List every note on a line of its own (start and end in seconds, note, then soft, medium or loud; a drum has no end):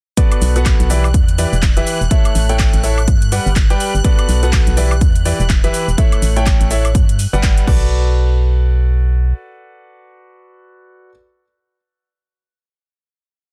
0.17 0.52 B3 medium
0.17 0.52 F#4 medium
0.17 0.52 A4 medium
0.17 0.52 B4 medium
0.17 0.52 D5 medium
0.17 7.67 F#6 medium
0.17 kick loud
0.17 closed hi-hat medium
0.17 cabasa soft
0.32 closed hi-hat medium
0.32 cabasa soft
0.32 high woodblock medium
0.42 0.73 B1 loud
0.42 open hi-hat loud
0.42 cabasa medium
0.56 0.88 B3 medium
0.56 0.88 F#4 medium
0.56 0.88 A4 medium
0.56 0.88 B4 medium
0.56 0.88 F#5 medium
0.56 closed hi-hat soft
0.56 cabasa soft
0.66 kick loud
0.66 clap loud
0.66 closed hi-hat medium
0.66 cabasa soft
0.66 high woodblock medium
0.80 1.16 B1 loud
0.80 closed hi-hat medium
0.80 cabasa soft
0.90 1.06 E3 medium
0.90 1.06 E4 medium
0.90 1.06 G4 medium
0.90 1.06 B4 medium
0.90 1.06 D5 medium
0.90 open hi-hat loud
0.90 cabasa medium
1.04 cabasa soft
1.04 high woodblock medium
1.14 1.46 E2 medium
1.14 kick loud
1.14 closed hi-hat medium
1.14 cabasa soft
1.28 closed hi-hat medium
1.28 cabasa soft
1.38 1.54 E3 medium
1.38 1.54 E4 medium
1.38 1.54 G4 medium
1.38 1.54 B4 medium
1.38 1.54 D5 medium
1.38 open hi-hat loud
1.38 cabasa medium
1.53 1.82 E1 loud
1.53 cabasa soft
1.62 kick loud
1.62 clap loud
1.62 closed hi-hat medium
1.62 cabasa soft
1.77 1.98 E3 loud
1.77 1.98 E4 medium
1.77 1.98 G4 loud
1.77 1.98 B4 medium
1.77 1.98 E5 loud
1.77 closed hi-hat medium
1.77 cabasa soft
1.87 open hi-hat medium
1.87 cabasa medium
2.01 2.08 E1 medium
2.01 cabasa soft
2.11 2.46 A3 medium
2.11 2.46 E4 medium
2.11 2.46 A4 medium
2.11 2.46 C#5 medium
2.11 2.46 E5 medium
2.11 kick loud
2.11 closed hi-hat medium
2.11 cabasa soft
2.25 closed hi-hat medium
2.25 cabasa soft
2.25 high woodblock medium
2.35 2.67 A1 loud
2.35 open hi-hat loud
2.35 cabasa medium
2.49 2.81 A3 medium
2.49 2.81 E4 medium
2.49 2.81 A4 medium
2.49 2.81 C#5 medium
2.49 2.81 G5 loud
2.49 closed hi-hat soft
2.49 cabasa soft
2.59 kick loud
2.59 clap loud
2.59 closed hi-hat medium
2.59 cabasa soft
2.59 high woodblock medium
2.73 3.09 A1 loud
2.73 closed hi-hat medium
2.73 cabasa soft
2.84 2.99 E4 medium
2.84 2.99 A4 medium
2.84 2.99 C#5 medium
2.84 2.99 E5 medium
2.84 open hi-hat loud
2.84 cabasa medium
2.98 cabasa soft
2.98 high woodblock medium
3.08 3.39 G2 medium
3.08 kick loud
3.08 closed hi-hat medium
3.08 cabasa soft
3.22 closed hi-hat medium
3.22 cabasa soft
3.32 3.48 G3 medium
3.32 3.48 G4 medium
3.32 3.48 B4 medium
3.32 3.47 D5 medium
3.32 3.48 F#5 medium
3.32 open hi-hat loud
3.32 cabasa medium
3.46 3.76 G1 loud
3.46 cabasa soft
3.56 kick loud
3.56 clap loud
3.56 closed hi-hat medium
3.56 cabasa soft
3.70 3.92 G3 loud
3.70 3.92 G4 loud
3.70 3.92 B4 medium
3.70 3.92 D5 medium
3.70 3.92 G5 loud
3.70 closed hi-hat medium
3.70 cabasa soft
3.80 open hi-hat loud
3.80 cabasa medium
3.94 4.02 G1 medium
3.94 cabasa soft
4.05 4.40 B3 medium
4.05 4.40 F#4 medium
4.05 4.40 A4 medium
4.05 4.40 B4 medium
4.05 4.40 D5 medium
4.05 kick loud
4.05 closed hi-hat medium
4.05 cabasa soft
4.19 closed hi-hat medium
4.19 cabasa soft
4.19 high woodblock medium
4.29 4.60 B1 loud
4.29 open hi-hat loud
4.29 cabasa medium
4.43 4.75 B3 medium
4.43 4.75 F#4 medium
4.43 4.75 A4 medium
4.43 4.75 B4 medium
4.43 4.75 F#5 medium
4.43 closed hi-hat soft
4.43 cabasa soft
4.53 kick loud
4.53 clap loud
4.53 closed hi-hat medium
4.53 cabasa soft
4.53 high woodblock medium
4.67 5.03 B1 loud
4.67 closed hi-hat medium
4.67 cabasa soft
4.77 4.93 E3 medium
4.77 4.93 E4 medium
4.77 4.93 G4 medium
4.77 4.93 B4 medium
4.77 4.93 D5 medium
4.77 open hi-hat loud
4.77 cabasa medium
4.91 cabasa soft
4.91 high woodblock medium
5.01 5.33 E2 medium
5.01 kick loud
5.01 closed hi-hat medium
5.01 cabasa soft
5.15 closed hi-hat medium
5.15 cabasa soft
5.25 5.41 E3 medium
5.25 5.41 E4 medium
5.25 5.41 G4 medium
5.25 5.41 B4 medium
5.25 5.41 D5 medium
5.25 open hi-hat loud
5.25 cabasa medium
5.40 5.69 E1 loud
5.40 cabasa soft
5.50 kick loud
5.50 clap loud
5.50 closed hi-hat medium
5.50 cabasa soft
5.64 5.85 E3 loud
5.64 5.85 E4 medium
5.64 5.85 G4 medium
5.64 5.85 B4 loud
5.64 5.85 E5 loud
5.64 closed hi-hat medium
5.64 cabasa soft
5.74 open hi-hat loud
5.74 cabasa medium
5.88 5.95 E1 medium
5.88 cabasa soft
5.98 6.33 A3 medium
5.98 6.33 E4 medium
5.98 6.33 A4 medium
5.98 6.33 C#5 medium
5.98 6.33 E5 medium
5.98 kick loud
5.98 closed hi-hat medium
5.98 cabasa soft
6.12 closed hi-hat soft
6.12 cabasa soft
6.12 high woodblock medium
6.22 6.54 A1 loud
6.22 open hi-hat loud
6.22 cabasa medium
6.36 6.68 A3 medium
6.36 6.68 E4 medium
6.36 6.68 A4 medium
6.36 6.68 C#5 medium
6.36 6.68 G5 loud
6.36 closed hi-hat soft
6.36 cabasa soft
6.46 kick loud
6.46 clap loud
6.46 closed hi-hat medium
6.46 cabasa soft
6.46 high woodblock medium
6.61 6.96 A1 loud
6.61 closed hi-hat medium
6.61 cabasa soft
6.71 6.86 E4 medium
6.71 6.86 A4 medium
6.71 6.86 C#5 medium
6.71 6.86 E5 medium
6.71 open hi-hat loud
6.71 cabasa medium
6.85 closed hi-hat soft
6.85 cabasa soft
6.85 high woodblock medium
6.95 7.27 G2 medium
6.95 kick loud
6.95 closed hi-hat medium
6.95 cabasa soft
7.09 closed hi-hat medium
7.09 cabasa soft
7.19 open hi-hat loud
7.19 cabasa medium
7.33 7.63 G1 loud
7.33 7.65 G3 medium
7.33 7.65 G4 medium
7.33 7.65 B4 medium
7.33 7.65 D5 medium
7.33 7.65 F#5 medium
7.33 cabasa soft
7.43 kick loud
7.43 clap loud
7.43 closed hi-hat medium
7.43 cabasa soft
7.58 closed hi-hat medium
7.58 cabasa soft
7.67 9.33 B1 loud
7.67 11.09 F#4 medium
7.67 11.09 A4 medium
7.67 11.09 B4 medium
7.67 11.09 D5 loud
7.67 kick loud
7.67 crash medium